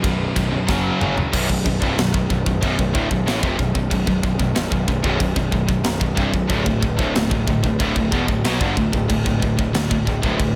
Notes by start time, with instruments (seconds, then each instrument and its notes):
0.03 picked electric bass B0, distorted electric guitar B1 F#2 B2, kick, ride
0.36 picked electric bass B0, distorted electric guitar B1 F#2, kick, ride
0.51 distorted electric guitar B1 F#2
0.67 picked electric bass F#1, distorted electric guitar F#2 C#3 F#3, kick, snare
1.00 picked electric bass F#1, distorted electric guitar F#2 C#3 F#3, mid tom
1.17 distorted electric guitar F#2 C#3, floor tom
1.32 picked electric bass B0, distorted electric guitar B1 F#2, kick, crash
1.48 picked electric bass B0, distorted electric guitar B1 F#2, kick
1.64 picked electric bass B0, distorted electric guitar B1 F#2, kick
1.80 picked electric bass C1, distorted electric guitar C2 G2, kick
1.96 picked electric bass B0, distorted electric guitar B1 F#2, snare, crash
2.12 picked electric bass B0, distorted electric guitar B1 F#2, kick
2.30 picked electric bass B0, distorted electric guitar B1 F#2, kick
2.46 picked electric bass B0, distorted electric guitar B1 F#2, kick
2.62 picked electric bass B0, distorted electric guitar B1 F#2, kick, crash
2.78 picked electric bass B0, distorted electric guitar B1 F#2, kick
2.93 picked electric bass D1, distorted electric guitar D2 A2, kick
3.10 picked electric bass B0, distorted electric guitar B1 F#2, kick
3.26 picked electric bass A1, distorted electric guitar A2 E3, snare, crash
3.42 picked electric bass F1, distorted electric guitar F2 C3, kick
3.58 picked electric bass B0, distorted electric guitar B1 F#2, kick
3.75 picked electric bass B0, distorted electric guitar B1 F#2, kick
3.90 picked electric bass B0, distorted electric guitar B1 F#2, kick, crash
4.07 picked electric bass B0, distorted electric guitar B1 F#2, kick
4.23 picked electric bass B0, distorted electric guitar B1 F#2, kick
4.39 picked electric bass B0, distorted electric guitar B1 F#2, kick
4.55 picked electric bass B0, distorted electric guitar B1 F#2, snare, crash
4.71 picked electric bass B0, distorted electric guitar B1 F#2, kick
4.87 picked electric bass B0, distorted electric guitar B1 F#2, kick
5.03 picked electric bass B0, distorted electric guitar B1 F#2, kick
5.20 picked electric bass B0, distorted electric guitar B1 F#2, kick, crash
5.36 picked electric bass B0, distorted electric guitar B1 F#2, kick
5.51 picked electric bass B0, distorted electric guitar B1 F#2, kick
5.67 picked electric bass B0, distorted electric guitar B1 F#2, kick
5.83 picked electric bass B0, distorted electric guitar B1 F#2, snare, crash
6.00 picked electric bass B0, distorted electric guitar B1 F#2, kick
6.16 picked electric bass C1, distorted electric guitar C2 G2, kick
6.31 picked electric bass B0, distorted electric guitar B1 F#2, kick
6.47 picked electric bass D1, distorted electric guitar D2 A2, kick, crash
6.64 picked electric bass D1, distorted electric guitar D2 A2, kick
6.81 picked electric bass D1, distorted electric guitar D2 A2, kick
6.96 picked electric bass D1, distorted electric guitar D2 A2, kick
7.13 picked electric bass D1, distorted electric guitar D2 A2, snare, crash
7.30 picked electric bass D1, distorted electric guitar D2 A2, kick
7.47 picked electric bass D1, distorted electric guitar D2 A2, kick
7.64 picked electric bass D1, distorted electric guitar D2 A2, kick
7.79 picked electric bass D1, distorted electric guitar D2 A2, kick, crash
7.96 picked electric bass D1, distorted electric guitar D2 A2, kick
8.12 picked electric bass E1, distorted electric guitar E2 B2, kick
8.28 picked electric bass D1, distorted electric guitar D2 A2, kick
8.44 picked electric bass B1, distorted electric guitar B2 F#3, snare, crash
8.61 picked electric bass G1, distorted electric guitar G2 D3, kick
8.77 picked electric bass D1, distorted electric guitar D2 A2, kick
8.92 picked electric bass D1, distorted electric guitar D2 A2, kick
9.09 picked electric bass D1, distorted electric guitar D2 A2, kick, crash
9.26 picked electric bass D1, distorted electric guitar D2 A2, kick
9.42 picked electric bass D1, distorted electric guitar D2 A2, kick
9.59 picked electric bass D1, distorted electric guitar D2 A2, kick
9.73 picked electric bass D1, distorted electric guitar D2 A2, snare, crash
9.91 picked electric bass D1, distorted electric guitar D2 A2, kick
10.07 picked electric bass D1, distorted electric guitar D2 A2, kick
10.23 picked electric bass D1, distorted electric guitar D2 A2, kick
10.39 picked electric bass D1, distorted electric guitar D2 A2, kick, crash